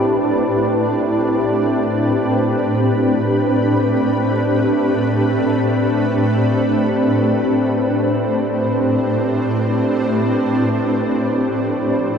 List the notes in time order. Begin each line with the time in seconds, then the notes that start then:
Already playing: A2 A3 C4 D4 E4 G4 B4
11.24 F3
12.01 A4